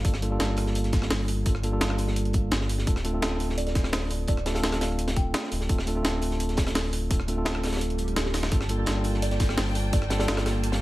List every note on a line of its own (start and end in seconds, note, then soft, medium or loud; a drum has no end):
0.00 0.13 G3 medium
0.00 0.37 F5 medium
0.04 0.39 G1 loud
0.04 0.13 A#3 medium
0.04 0.13 D4 medium
0.04 0.13 F4 medium
0.04 0.14 A4 medium
0.04 kick loud
0.04 closed hi-hat medium
0.13 cross-stick soft
0.13 snare medium
0.21 0.29 G3 medium
0.21 0.29 A#3 medium
0.21 0.29 D4 medium
0.21 0.29 F4 medium
0.21 0.30 A4 loud
0.21 closed hi-hat medium
0.31 0.37 G3 medium
0.31 0.38 A#3 medium
0.31 0.38 D4 medium
0.31 0.38 F4 medium
0.31 0.38 A4 loud
0.38 1.09 G1 medium
0.38 1.43 G3 medium
0.38 1.43 A#3 medium
0.38 1.44 D4 medium
0.38 1.44 F4 medium
0.38 1.45 A4 loud
0.38 snare loud
0.38 closed hi-hat medium
0.57 cross-stick soft
0.57 closed hi-hat medium
0.57 open hi-hat medium
0.66 snare soft
0.75 closed hi-hat medium
0.84 snare soft
0.84 closed hi-hat soft
0.93 kick loud
0.93 snare soft
0.93 closed hi-hat medium
1.02 cross-stick soft
1.02 snare medium
1.10 1.45 G1 medium
1.10 snare loud
1.10 closed hi-hat medium
1.10 open hi-hat medium
1.28 closed hi-hat medium
1.28 open hi-hat medium
1.45 1.80 G1 loud
1.45 1.54 G3 medium
1.45 1.54 A#3 medium
1.45 1.54 D4 medium
1.45 1.55 F4 medium
1.45 1.55 A4 medium
1.45 kick loud
1.45 closed hi-hat medium
1.55 cross-stick soft
1.63 1.70 G3 medium
1.63 1.70 A#3 medium
1.63 1.70 D4 medium
1.63 1.71 F4 medium
1.63 1.71 A4 loud
1.63 closed hi-hat medium
1.72 1.78 G3 medium
1.72 1.79 A#3 medium
1.72 1.79 D4 medium
1.72 1.79 F4 medium
1.72 1.79 A4 loud
1.80 2.50 G1 medium
1.80 2.84 G3 medium
1.80 2.85 A#3 medium
1.80 2.85 D4 medium
1.80 2.85 F4 medium
1.80 2.86 A4 loud
1.80 snare loud
1.80 closed hi-hat medium
1.90 cross-stick medium
1.98 closed hi-hat medium
1.98 open hi-hat medium
2.08 snare soft
2.16 closed hi-hat medium
2.25 closed hi-hat soft
2.33 kick loud
2.33 closed hi-hat medium
2.51 2.86 G1 medium
2.51 snare loud
2.51 closed hi-hat medium
2.61 snare medium
2.69 closed hi-hat medium
2.69 open hi-hat medium
2.78 snare medium
2.86 3.21 D1 loud
2.86 2.95 A3 medium
2.86 2.95 C4 medium
2.86 2.96 D4 medium
2.86 2.96 F4 medium
2.86 2.96 A4 medium
2.86 kick loud
2.86 closed hi-hat medium
2.96 cross-stick soft
2.96 snare medium
3.04 3.11 A3 loud
3.04 3.11 C4 medium
3.04 3.12 D4 medium
3.04 3.12 F4 medium
3.04 3.12 A4 loud
3.04 closed hi-hat medium
3.13 3.19 A3 medium
3.13 3.20 C4 medium
3.13 3.20 D4 medium
3.13 3.20 F4 medium
3.13 3.21 A4 loud
3.21 3.92 D1 medium
3.21 4.25 A3 medium
3.21 4.26 C4 medium
3.21 4.26 D4 medium
3.21 4.27 F4 medium
3.21 4.27 A4 loud
3.21 snare loud
3.21 closed hi-hat medium
3.40 closed hi-hat medium
3.40 open hi-hat medium
3.49 snare soft
3.58 3.63 D5 medium
3.58 closed hi-hat medium
3.67 3.72 D5 medium
3.67 snare soft
3.67 closed hi-hat soft
3.75 kick loud
3.75 snare soft
3.75 closed hi-hat medium
3.84 cross-stick soft
3.84 snare medium
3.93 4.27 D1 medium
3.93 4.14 C5 medium
3.93 snare loud
3.93 closed hi-hat medium
3.93 open hi-hat medium
4.11 closed hi-hat medium
4.11 open hi-hat medium
4.27 4.62 D1 loud
4.27 4.36 A3 medium
4.27 4.37 C4 medium
4.27 4.37 D4 medium
4.27 4.37 F4 medium
4.27 4.37 A4 medium
4.27 4.53 D5 medium
4.27 kick loud
4.27 closed hi-hat medium
4.37 cross-stick soft
4.45 4.52 A3 medium
4.45 4.52 C4 medium
4.45 4.53 D4 medium
4.45 4.53 F4 medium
4.45 4.53 A4 loud
4.45 snare loud
4.45 closed hi-hat medium
4.54 4.61 A3 medium
4.54 4.61 C4 medium
4.54 4.61 D4 medium
4.54 4.62 F4 medium
4.54 4.62 A4 loud
4.54 4.76 F5 medium
4.54 snare loud
4.54 closed hi-hat medium
4.62 5.33 D1 medium
4.62 5.66 A3 medium
4.62 5.67 C4 medium
4.62 5.67 D4 medium
4.62 5.68 F4 medium
4.62 5.68 A4 loud
4.62 snare loud
4.62 closed hi-hat medium
4.72 cross-stick soft
4.72 snare loud
4.72 closed hi-hat medium
4.81 5.02 F5 loud
4.81 cross-stick soft
4.81 snare loud
4.81 closed hi-hat medium
4.81 open hi-hat medium
4.99 closed hi-hat medium
5.08 snare loud
5.08 closed hi-hat medium
5.08 closed hi-hat soft
5.16 5.66 G5 medium
5.16 kick loud
5.16 closed hi-hat medium
5.34 snare loud
5.34 closed hi-hat medium
5.44 snare soft
5.52 5.68 D1 medium
5.52 closed hi-hat medium
5.52 open hi-hat medium
5.61 snare medium
5.68 6.03 D1 loud
5.68 5.77 A3 medium
5.68 5.78 C4 medium
5.68 5.78 D4 medium
5.68 5.78 F4 medium
5.68 5.78 A4 medium
5.68 kick loud
5.68 closed hi-hat medium
5.78 cross-stick soft
5.78 snare medium
5.86 5.93 A3 loud
5.86 5.94 C4 medium
5.86 5.94 D4 medium
5.86 5.94 F4 medium
5.86 5.94 A4 loud
5.86 closed hi-hat medium
5.95 6.02 A3 medium
5.95 6.02 C4 medium
5.95 6.03 D4 medium
5.95 6.03 F4 medium
5.95 6.03 A4 loud
6.03 6.74 D1 medium
6.03 7.08 A3 loud
6.03 7.08 C4 medium
6.03 7.08 D4 medium
6.03 7.09 F4 medium
6.03 7.09 A4 loud
6.03 snare loud
6.03 closed hi-hat medium
6.03 closed hi-hat loud
6.22 closed hi-hat medium
6.22 open hi-hat medium
6.31 snare soft
6.40 closed hi-hat medium
6.49 snare soft
6.49 closed hi-hat soft
6.57 kick loud
6.57 snare loud
6.57 snare soft
6.57 closed hi-hat medium
6.67 cross-stick soft
6.67 snare loud
6.67 closed hi-hat medium
6.75 7.09 D1 medium
6.75 snare loud
6.75 closed hi-hat medium
6.75 open hi-hat medium
6.93 closed hi-hat medium
6.93 open hi-hat medium
7.10 7.45 D1 loud
7.10 7.19 A3 medium
7.10 7.19 C4 medium
7.10 7.19 D4 medium
7.10 7.19 F4 medium
7.10 7.20 A4 loud
7.10 kick loud
7.10 closed hi-hat loud
7.10 closed hi-hat medium
7.20 cross-stick soft
7.27 7.35 A3 medium
7.27 7.35 C4 medium
7.27 7.35 D4 medium
7.27 7.35 F4 medium
7.27 7.36 A4 loud
7.27 closed hi-hat medium
7.36 7.43 A3 medium
7.36 7.44 C4 medium
7.36 7.44 D4 medium
7.36 7.44 F4 medium
7.36 7.44 A4 loud
7.44 8.15 D1 medium
7.44 8.49 A3 medium
7.44 8.49 C4 medium
7.44 8.50 D4 medium
7.44 8.50 F4 medium
7.44 8.51 A4 loud
7.44 snare loud
7.44 closed hi-hat medium
7.55 cross-stick medium
7.64 cross-stick soft
7.64 snare medium
7.64 closed hi-hat medium
7.64 open hi-hat medium
7.67 snare medium
7.67 closed hi-hat medium
7.73 snare medium
7.73 closed hi-hat soft
7.73 closed hi-hat medium
7.77 snare medium
7.77 closed hi-hat medium
7.81 closed hi-hat loud
7.81 closed hi-hat medium
7.81 swell medium
7.90 closed hi-hat soft
7.98 closed hi-hat medium
8.08 closed hi-hat soft
8.16 8.50 D1 loud
8.16 snare loud
8.16 closed hi-hat medium
8.26 snare medium
8.34 snare medium
8.34 closed hi-hat medium
8.34 open hi-hat medium
8.43 snare medium
8.51 8.86 G1 loud
8.51 8.60 G3 medium
8.51 8.60 A#3 medium
8.51 10.82 A#3 medium
8.51 8.60 D4 medium
8.51 10.82 F4 medium
8.51 8.61 F4 medium
8.51 8.61 A4 medium
8.51 10.82 G5 medium
8.51 10.82 A5 medium
8.51 kick loud
8.51 closed hi-hat medium
8.61 cross-stick soft
8.61 snare medium
8.69 8.76 G3 medium
8.69 8.76 A#3 medium
8.69 8.76 D4 medium
8.69 8.76 F4 medium
8.69 8.77 A4 loud
8.69 closed hi-hat medium
8.78 8.84 G3 medium
8.78 8.85 A#3 medium
8.78 8.85 D4 medium
8.78 8.85 F4 medium
8.78 8.85 A4 medium
8.86 9.56 G1 medium
8.86 9.90 G3 medium
8.86 9.91 A#3 medium
8.86 9.91 D4 medium
8.86 9.91 F4 medium
8.86 9.92 A4 loud
8.86 snare loud
8.86 closed hi-hat medium
8.86 closed hi-hat loud
9.04 closed hi-hat medium
9.04 open hi-hat medium
9.14 snare soft
9.22 9.28 D5 medium
9.22 closed hi-hat loud
9.22 closed hi-hat medium
9.31 9.37 D5 medium
9.31 snare soft
9.31 closed hi-hat soft
9.40 kick loud
9.40 snare soft
9.40 closed hi-hat medium
9.49 cross-stick soft
9.49 snare medium
9.57 9.92 G1 medium
9.57 9.79 C5 medium
9.57 snare loud
9.57 closed hi-hat medium
9.57 open hi-hat medium
9.75 closed hi-hat medium
9.75 open hi-hat medium
9.92 10.27 G1 medium
9.92 10.01 G3 medium
9.92 10.01 A#3 medium
9.92 10.02 D4 medium
9.92 10.02 F4 medium
9.92 10.02 A4 medium
9.92 10.18 D5 medium
9.92 kick loud
9.92 closed hi-hat loud
9.92 closed hi-hat medium
10.02 cross-stick soft
10.10 10.17 G3 medium
10.10 10.17 A#3 medium
10.10 10.18 D4 medium
10.10 10.18 F4 medium
10.10 10.18 A4 loud
10.10 snare loud
10.10 closed hi-hat medium
10.19 10.25 G3 medium
10.19 10.26 A#3 medium
10.19 10.26 D4 medium
10.19 10.26 F4 medium
10.19 10.27 A4 loud
10.19 10.55 D5 medium
10.19 snare loud
10.19 closed hi-hat medium
10.27 10.82 G1 medium
10.27 10.82 G3 medium
10.27 10.82 A#3 medium
10.27 10.82 D4 medium
10.27 10.82 F4 medium
10.27 10.82 A4 loud
10.27 snare loud
10.27 closed hi-hat loud
10.37 cross-stick medium
10.37 snare loud
10.37 closed hi-hat medium
10.46 cross-stick soft
10.46 snare loud
10.46 closed hi-hat medium
10.46 open hi-hat medium
10.63 closed hi-hat medium
10.63 closed hi-hat loud
10.72 10.82 F5 medium
10.72 snare loud
10.72 closed hi-hat soft
10.72 closed hi-hat medium